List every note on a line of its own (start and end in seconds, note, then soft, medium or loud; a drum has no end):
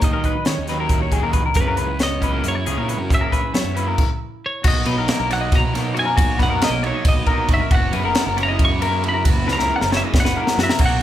0.00 0.12 D#2 medium
0.00 1.09 D#3 medium
0.00 0.32 D#3 medium
0.00 0.68 F#3 medium
0.00 0.32 F#3 medium
0.00 0.89 F#4 medium
0.00 kick loud
0.00 closed hi-hat medium
0.04 0.32 A#3 medium
0.04 0.32 D#4 loud
0.04 0.87 D#5 medium
0.13 0.25 A#4 medium
0.24 0.67 D#4 medium
0.24 0.47 B4 medium
0.24 kick medium
0.24 closed hi-hat medium
0.45 0.57 D#3 medium
0.45 1.78 C#4 medium
0.45 0.69 C#5 medium
0.45 snare loud
0.45 closed hi-hat medium
0.58 1.20 D#2 medium
0.67 0.98 D#3 medium
0.67 2.21 F#3 medium
0.67 0.98 F#3 medium
0.67 0.98 A#3 medium
0.67 1.10 D#4 medium
0.67 0.98 D#4 medium
0.67 0.80 B4 medium
0.67 snare soft
0.67 closed hi-hat medium
0.80 1.02 A#4 medium
0.89 1.00 E4 medium
0.89 kick loud
0.89 closed hi-hat medium
1.00 1.56 F#4 medium
1.00 1.13 C#5 medium
1.10 1.53 D#3 medium
1.10 1.42 D#3 medium
1.10 1.42 F#3 medium
1.10 1.41 A#3 medium
1.10 1.53 D#4 medium
1.10 1.41 D#4 medium
1.10 1.24 G#4 medium
1.10 kick medium
1.10 closed hi-hat medium
1.23 1.43 D#2 medium
1.23 1.33 A#4 medium
1.33 1.45 B4 medium
1.33 kick medium
1.33 closed hi-hat medium
1.45 1.54 C#2 medium
1.45 1.57 A#4 medium
1.54 1.66 F#2 medium
1.54 3.07 F#2 medium
1.54 1.85 C#3 medium
1.54 1.86 E3 medium
1.54 1.86 A#3 medium
1.54 1.86 C#4 medium
1.54 2.02 B4 medium
1.54 kick loud
1.54 closed hi-hat medium
1.68 1.78 F#2 medium
1.68 1.77 A#4 medium
1.77 2.41 C#2 medium
1.77 2.22 C#4 medium
1.77 2.00 B4 medium
1.77 closed hi-hat medium
1.99 3.08 B3 medium
1.99 2.23 C#5 medium
1.99 2.47 D#5 loud
1.99 snare medium
1.99 closed hi-hat medium
2.22 2.51 C#3 medium
2.22 2.51 E3 medium
2.22 3.07 F#3 medium
2.22 2.51 A#3 medium
2.22 2.51 C#4 medium
2.22 2.65 C#4 medium
2.22 2.33 B4 medium
2.22 kick medium
2.22 closed hi-hat medium
2.34 2.55 A#4 medium
2.44 2.64 F#2 medium
2.44 4.65 E4 medium
2.44 closed hi-hat medium
2.48 3.14 C#5 medium
2.55 2.66 C#5 medium
2.65 2.77 C#2 medium
2.65 3.08 C#3 medium
2.65 2.95 C#3 medium
2.65 2.95 E3 medium
2.65 2.95 A#3 medium
2.65 2.95 C#4 medium
2.65 3.08 C#4 medium
2.65 2.78 G#4 medium
2.65 closed hi-hat medium
2.77 2.99 A#2 medium
2.77 2.88 A#4 medium
2.88 2.98 B4 medium
2.88 closed hi-hat medium
2.98 3.19 F#2 medium
2.98 3.10 A#4 medium
3.09 3.95 F#2 medium
3.09 3.39 C#3 medium
3.09 3.39 E3 medium
3.09 3.39 A#3 medium
3.09 3.39 C#4 medium
3.09 kick loud
3.09 closed hi-hat medium
3.15 4.18 E5 loud
3.21 3.32 A#4 medium
3.32 3.75 C#4 medium
3.32 3.54 B4 medium
3.32 kick medium
3.32 closed hi-hat medium
3.54 3.63 F#3 medium
3.54 3.96 B3 medium
3.54 3.76 C#5 medium
3.54 snare loud
3.54 closed hi-hat medium
3.64 3.95 F#2 loud
3.75 3.98 C#3 medium
3.75 3.98 E3 medium
3.75 3.95 F#3 medium
3.75 3.98 A#3 loud
3.75 3.98 C#4 medium
3.75 3.96 C#4 medium
3.75 3.88 B4 medium
3.75 closed hi-hat medium
3.88 4.10 A#4 medium
3.98 kick loud
3.98 crash medium
4.46 4.67 C#5 medium
4.64 4.84 B1 medium
4.64 5.96 B2 medium
4.64 5.08 A#3 medium
4.64 4.86 F#4 loud
4.64 5.33 D#5 medium
4.64 kick loud
4.64 crash loud
4.85 4.96 B2 medium
4.85 5.15 B2 medium
4.85 5.15 F#3 medium
4.85 5.15 B3 medium
4.85 5.14 D#4 loud
4.85 5.31 D#4 medium
4.85 4.97 B4 medium
4.85 ride medium
4.97 5.07 B1 medium
4.97 5.18 A#4 medium
5.08 6.16 A#3 medium
5.08 snare loud
5.08 ride medium
5.19 5.50 B1 medium
5.19 5.31 A#4 medium
5.30 5.60 B2 medium
5.30 6.83 F#3 medium
5.30 5.59 F#3 medium
5.30 5.59 B3 medium
5.30 5.59 D#4 medium
5.30 6.16 D#4 medium
5.30 5.41 C#5 medium
5.30 5.54 F#5 medium
5.30 snare soft
5.30 ride medium
5.41 5.62 D#5 medium
5.52 6.19 B2 medium
5.52 5.99 A#5 loud
5.52 kick loud
5.52 snare soft
5.52 ride loud
5.62 5.73 B4 medium
5.73 6.03 B2 medium
5.73 6.03 F#3 medium
5.73 6.03 B3 medium
5.73 6.03 D#4 medium
5.73 5.96 A#4 medium
5.73 snare soft
5.73 ride medium
5.94 6.15 F#2 medium
5.94 6.08 E4 medium
5.94 6.05 F#4 medium
5.94 ride medium
5.99 6.39 G#5 loud
6.05 6.18 F#4 medium
6.05 6.16 A#4 medium
6.17 6.38 B1 loud
6.17 7.49 B2 medium
6.17 6.62 A#3 medium
6.17 6.39 F#4 medium
6.17 kick loud
6.17 ride loud
6.38 6.48 F#2 loud
6.38 6.68 B2 medium
6.38 6.68 F#3 medium
6.38 6.67 B3 medium
6.38 6.67 D#4 medium
6.38 6.84 D#4 medium
6.38 6.50 B4 medium
6.38 kick medium
6.38 snare soft
6.38 ride medium
6.43 6.64 F#5 medium
6.48 6.60 F#2 medium
6.48 6.71 A#4 medium
6.62 7.70 A#3 medium
6.62 6.86 D#5 medium
6.62 snare loud
6.62 ride medium
6.70 6.91 B1 loud
6.70 6.83 A#4 medium
6.82 7.12 B2 medium
6.82 7.12 F#3 medium
6.82 8.38 F#3 medium
6.82 7.12 B3 medium
6.82 7.12 D#4 medium
6.82 7.70 D#4 medium
6.82 6.94 C#5 medium
6.82 ride medium
6.87 7.08 C#5 medium
6.94 7.16 D#5 medium
7.05 7.26 B1 medium
7.05 7.52 D#5 loud
7.05 kick loud
7.05 ride loud
7.16 7.28 B4 medium
7.26 7.57 B2 medium
7.26 7.57 F#3 medium
7.26 7.57 B3 medium
7.26 7.56 D#4 loud
7.26 7.49 A#4 medium
7.26 kick medium
7.26 ride medium
7.48 7.59 G1 medium
7.48 7.69 F#2 medium
7.48 7.60 F#4 medium
7.48 9.05 F#4 medium
7.48 kick medium
7.48 ride medium
7.54 7.74 E5 loud
7.60 7.71 A#4 medium
7.71 7.92 F#1 medium
7.71 9.24 F#2 medium
7.71 8.15 B3 medium
7.71 7.94 F#4 medium
7.71 8.41 F#5 loud
7.71 kick loud
7.71 ride loud
7.92 8.03 F#2 medium
7.92 8.23 C#3 medium
7.92 8.23 E3 medium
7.92 8.22 A#3 medium
7.92 8.39 C#4 medium
7.92 8.22 E4 medium
7.92 8.04 B4 medium
7.92 ride medium
8.04 8.14 F#1 medium
8.04 8.26 A#4 medium
8.15 9.28 B3 medium
8.15 snare loud
8.15 ride medium
8.26 8.57 F#1 medium
8.26 8.37 A#4 medium
8.37 8.66 C#3 medium
8.37 8.66 E3 medium
8.37 9.93 F#3 medium
8.37 8.66 A#3 medium
8.37 9.24 C#4 medium
8.37 8.66 E4 medium
8.37 8.48 C#5 medium
8.37 ride medium
8.43 8.63 A#5 loud
8.48 8.71 D#5 medium
8.59 9.26 F#2 medium
8.59 kick loud
8.59 ride loud
8.65 9.08 C#6 loud
8.71 8.82 B4 medium
8.80 9.10 C#3 medium
8.80 9.10 E3 medium
8.80 9.10 A#3 medium
8.80 9.10 E4 medium
8.80 9.04 A#4 medium
8.80 ride medium
9.04 9.24 C#3 medium
9.04 10.58 E4 medium
9.04 9.13 F#4 medium
9.04 ride medium
9.09 9.52 B5 loud
9.14 9.24 A#4 medium
9.24 9.45 F#1 loud
9.24 10.78 F#2 medium
9.24 9.73 B3 medium
9.24 9.47 F#4 medium
9.24 kick loud
9.24 ride loud
9.46 9.58 C#2 loud
9.46 9.76 C#3 medium
9.46 9.76 E3 medium
9.46 9.76 A#3 medium
9.46 9.76 E4 medium
9.46 9.58 B4 medium
9.46 snare medium
9.51 9.93 C#4 medium
9.51 9.73 A#5 medium
9.59 9.70 C#2 medium
9.59 9.80 A#4 medium
9.59 snare medium
9.73 9.94 B3 medium
9.73 9.81 F#5 loud
9.81 10.02 F#1 loud
9.81 9.92 A#4 medium
9.81 snare medium
9.91 10.21 C#3 medium
9.91 10.20 E3 medium
9.91 11.02 F#3 medium
9.91 10.21 A#3 medium
9.91 10.05 B3 medium
9.91 10.20 E4 medium
9.91 10.04 C#5 medium
9.91 snare medium
9.97 10.02 E5 medium
10.04 10.81 C#4 medium
10.04 10.24 D#5 medium
10.13 10.34 F#1 medium
10.13 kick loud
10.13 snare medium
10.20 10.62 F#5 medium
10.25 10.36 B4 medium
10.25 snare medium
10.36 10.65 C#3 medium
10.36 10.65 E3 medium
10.36 10.65 A#3 medium
10.36 10.65 E4 medium
10.36 10.58 A#4 medium
10.47 snare medium
10.58 10.68 F#2 loud
10.58 10.77 C#3 medium
10.58 10.81 E4 medium
10.58 10.70 F#4 medium
10.58 snare loud
10.63 10.83 E5 medium
10.69 10.81 A#4 medium
10.69 snare loud
10.79 11.00 B1 medium
10.79 11.02 B2 medium
10.79 11.02 A#3 medium
10.79 11.02 F#4 medium
10.79 kick loud
10.79 ride loud
10.79 crash loud
10.86 11.02 F#5 loud